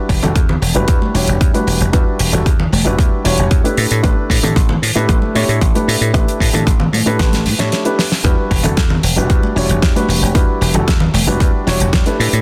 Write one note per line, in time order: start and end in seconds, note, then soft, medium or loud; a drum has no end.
0.00 0.19 G3 medium
0.00 0.19 D4 medium
0.00 0.19 E4 medium
0.00 0.20 F#4 medium
0.00 0.20 B4 medium
0.09 0.19 E1 medium
0.09 kick medium
0.09 open hi-hat medium
0.22 0.32 E1 medium
0.22 0.37 G3 medium
0.22 0.37 D4 medium
0.22 0.37 E4 medium
0.22 0.37 F#4 medium
0.22 0.37 A4 medium
0.22 closed hi-hat medium
0.22 low conga medium
0.35 0.55 E2 medium
0.35 kick loud
0.35 closed hi-hat medium
0.49 low conga medium
0.62 0.72 E1 medium
0.62 open hi-hat medium
0.74 0.85 E1 medium
0.74 1.11 G3 medium
0.74 1.11 D4 medium
0.74 1.11 E4 medium
0.74 1.11 F#4 medium
0.74 1.12 B4 medium
0.74 closed hi-hat medium
0.88 0.98 E2 medium
0.88 kick loud
0.88 closed hi-hat medium
1.02 high conga medium
1.14 1.24 E1 medium
1.14 1.51 G3 medium
1.14 1.51 D4 medium
1.14 1.51 E4 medium
1.14 1.51 F#4 medium
1.14 1.51 C#5 medium
1.14 open hi-hat loud
1.28 1.37 E1 medium
1.28 closed hi-hat medium
1.41 1.51 E2 medium
1.41 kick loud
1.41 closed hi-hat medium
1.54 1.90 G3 medium
1.54 1.90 D4 medium
1.54 1.90 E4 medium
1.54 1.90 F#4 medium
1.54 1.90 B4 medium
1.54 closed hi-hat soft
1.54 high conga medium
1.67 1.77 E1 medium
1.67 open hi-hat loud
1.80 1.90 E1 medium
1.80 closed hi-hat medium
1.93 2.03 E2 medium
1.93 2.29 G3 medium
1.93 2.30 D4 medium
1.93 2.30 E4 medium
1.93 2.30 F#4 medium
1.93 2.30 B4 medium
1.93 kick loud
1.93 closed hi-hat medium
2.19 2.30 E1 medium
2.19 open hi-hat loud
2.32 2.42 E1 medium
2.32 2.47 G3 medium
2.32 2.47 D4 medium
2.32 2.47 E4 medium
2.32 2.47 F#4 medium
2.32 2.47 A4 medium
2.32 closed hi-hat medium
2.32 low conga medium
2.46 2.66 E2 medium
2.46 kick loud
2.46 closed hi-hat medium
2.60 low conga medium
2.72 2.82 E1 medium
2.72 open hi-hat medium
2.72 high conga medium
2.85 2.95 E1 medium
2.85 3.21 G3 medium
2.85 3.21 D4 medium
2.85 3.22 E4 medium
2.85 3.22 F#4 medium
2.85 3.22 B4 medium
2.85 closed hi-hat medium
2.99 3.09 E2 medium
2.99 kick loud
2.99 closed hi-hat medium
3.12 muted slap bass stroke soft
3.24 3.35 E1 medium
3.24 3.61 G3 medium
3.24 3.61 D4 medium
3.24 3.61 E4 medium
3.24 3.61 F#4 medium
3.24 3.61 C#5 medium
3.24 open hi-hat loud
3.38 3.48 E1 medium
3.38 closed hi-hat medium
3.51 3.61 E2 medium
3.51 kick loud
3.51 closed hi-hat medium
3.64 4.00 A3 medium
3.64 4.00 D4 medium
3.64 4.01 E4 medium
3.64 4.01 G4 medium
3.64 4.01 B4 medium
3.64 closed hi-hat soft
3.77 3.87 A2 medium
3.77 open hi-hat medium
3.91 4.01 A2 medium
3.91 closed hi-hat medium
4.03 4.14 A1 medium
4.03 4.40 A3 medium
4.03 4.40 D4 medium
4.03 4.40 E4 medium
4.03 4.40 G4 medium
4.03 4.40 B4 medium
4.03 kick loud
4.03 closed hi-hat medium
4.30 4.40 A2 medium
4.30 kick medium
4.30 open hi-hat loud
4.43 4.53 A2 medium
4.43 4.57 A3 medium
4.43 4.57 D4 medium
4.43 4.57 E4 medium
4.43 4.58 G4 medium
4.43 4.58 A4 medium
4.43 closed hi-hat medium
4.43 low conga medium
4.56 4.76 A1 medium
4.56 kick loud
4.56 closed hi-hat medium
4.69 low conga medium
4.82 4.92 A2 medium
4.82 open hi-hat loud
4.95 5.06 A2 medium
4.95 5.32 A3 medium
4.95 5.32 D4 medium
4.95 5.32 E4 medium
4.95 5.32 G4 medium
4.95 5.32 B4 medium
4.95 closed hi-hat medium
5.09 5.19 A1 medium
5.09 kick loud
5.09 closed hi-hat medium
5.22 high conga medium
5.35 5.45 A2 medium
5.35 5.72 A3 medium
5.35 5.72 D4 medium
5.35 5.72 E4 medium
5.35 5.72 G4 medium
5.35 5.72 C#5 medium
5.35 open hi-hat medium
5.49 5.58 A2 medium
5.49 closed hi-hat medium
5.61 5.72 A1 medium
5.61 kick loud
5.61 closed hi-hat medium
5.75 6.11 A3 medium
5.75 6.11 D4 medium
5.75 6.11 E4 medium
5.75 6.11 G4 medium
5.75 6.12 B4 medium
5.75 closed hi-hat soft
5.75 high conga medium
5.88 5.98 A2 medium
5.88 open hi-hat loud
6.01 6.11 A2 medium
6.01 closed hi-hat medium
6.14 6.24 A1 medium
6.14 6.50 A3 medium
6.14 6.51 D4 medium
6.14 6.51 E4 medium
6.14 6.51 G4 medium
6.14 6.51 B4 medium
6.14 kick loud
6.14 closed hi-hat medium
6.28 closed hi-hat soft
6.40 6.50 A2 medium
6.40 kick medium
6.40 open hi-hat loud
6.53 6.64 A2 medium
6.53 6.68 A3 medium
6.53 6.68 D4 medium
6.53 6.68 E4 medium
6.53 6.68 G4 medium
6.53 6.68 A4 medium
6.53 closed hi-hat medium
6.53 low conga medium
6.67 6.86 A1 medium
6.67 kick loud
6.67 closed hi-hat medium
6.80 low conga medium
6.93 7.03 A2 medium
6.93 open hi-hat loud
6.93 high conga medium
7.06 7.16 A2 medium
7.06 7.42 A3 medium
7.06 7.43 D4 medium
7.06 7.43 E4 medium
7.06 7.43 G4 medium
7.06 7.43 B4 medium
7.06 closed hi-hat medium
7.19 7.47 A1 medium
7.19 kick loud
7.19 snare medium
7.19 closed hi-hat medium
7.33 snare medium
7.33 closed hi-hat medium
7.33 high conga medium
7.46 7.56 A2 medium
7.46 open hi-hat loud
7.59 7.69 A2 medium
7.59 7.82 A3 medium
7.59 7.82 D4 medium
7.59 7.82 E4 medium
7.59 7.82 G4 medium
7.59 7.83 C#5 medium
7.59 snare medium
7.59 closed hi-hat medium
7.72 snare medium
7.72 closed hi-hat medium
7.85 7.99 A3 medium
7.85 7.99 D4 medium
7.85 8.00 E4 medium
7.85 8.00 G4 medium
7.85 8.00 B4 medium
7.85 closed hi-hat soft
7.99 snare medium
7.99 open hi-hat medium
8.12 snare medium
8.12 open hi-hat medium
8.24 8.35 E2 medium
8.24 8.61 G3 medium
8.24 8.61 D4 medium
8.24 8.61 E4 medium
8.24 8.61 F#4 medium
8.24 8.61 B4 medium
8.24 kick loud
8.24 closed hi-hat medium
8.51 8.61 E1 medium
8.51 kick medium
8.51 open hi-hat loud
8.63 8.74 E1 medium
8.63 8.78 G3 medium
8.63 8.78 D4 medium
8.63 8.78 E4 medium
8.63 8.79 F#4 medium
8.63 8.79 A4 medium
8.63 closed hi-hat medium
8.63 low conga medium
8.77 8.97 E2 medium
8.77 kick loud
8.77 snare loud
8.77 closed hi-hat medium
8.90 low conga medium
9.03 9.13 E1 medium
9.03 open hi-hat loud
9.16 9.27 E1 medium
9.16 9.53 G3 medium
9.16 9.53 D4 medium
9.16 9.53 E4 medium
9.16 9.53 F#4 medium
9.16 9.54 B4 medium
9.16 closed hi-hat medium
9.30 9.40 E2 medium
9.30 kick loud
9.30 closed hi-hat medium
9.43 high conga medium
9.55 9.66 E1 medium
9.55 9.92 G3 medium
9.55 9.93 D4 medium
9.55 9.93 E4 medium
9.55 9.93 F#4 medium
9.55 9.93 C#5 medium
9.55 open hi-hat medium
9.69 9.79 E1 medium
9.69 closed hi-hat medium
9.82 9.93 E2 medium
9.82 kick loud
9.82 snare loud
9.82 closed hi-hat medium
9.95 10.32 G3 medium
9.95 10.32 D4 medium
9.95 10.32 E4 medium
9.95 10.32 F#4 medium
9.95 10.32 B4 medium
9.95 closed hi-hat medium
9.95 high conga medium
10.08 10.19 E1 medium
10.08 open hi-hat loud
10.22 10.32 E1 medium
10.22 closed hi-hat medium
10.34 10.45 E2 medium
10.34 10.71 G3 medium
10.34 10.72 D4 medium
10.34 10.72 E4 medium
10.34 10.72 F#4 medium
10.34 10.72 B4 medium
10.34 kick loud
10.34 closed hi-hat medium
10.61 10.71 E1 medium
10.61 open hi-hat loud
10.74 10.84 E1 medium
10.74 10.89 G3 medium
10.74 10.89 D4 medium
10.74 10.89 E4 medium
10.74 10.89 F#4 medium
10.74 10.89 A4 medium
10.74 closed hi-hat medium
10.74 low conga medium
10.88 11.07 E2 medium
10.88 kick loud
10.88 snare loud
10.88 closed hi-hat medium
11.00 low conga loud
11.14 11.24 E1 medium
11.14 open hi-hat loud
11.14 high conga medium
11.27 11.37 E1 medium
11.27 11.63 G3 medium
11.27 11.64 D4 medium
11.27 11.64 E4 medium
11.27 11.64 F#4 medium
11.27 11.64 B4 medium
11.27 closed hi-hat medium
11.40 11.50 E2 medium
11.40 kick loud
11.40 closed hi-hat medium
11.53 muted slap bass stroke soft
11.66 11.77 E1 medium
11.66 12.03 G3 medium
11.66 12.03 D4 medium
11.66 12.03 E4 medium
11.66 12.04 F#4 medium
11.66 12.04 C#5 medium
11.66 snare medium
11.66 open hi-hat loud
11.80 11.90 E1 medium
11.80 closed hi-hat medium
11.93 12.03 E2 medium
11.93 kick loud
11.93 snare loud
11.93 closed hi-hat medium
12.06 12.41 A3 medium
12.06 12.41 D4 medium
12.06 12.41 E4 medium
12.06 12.41 G4 medium
12.06 12.41 B4 medium
12.06 closed hi-hat medium
12.20 12.30 A2 medium
12.20 open hi-hat loud
12.33 12.41 A2 medium
12.33 closed hi-hat medium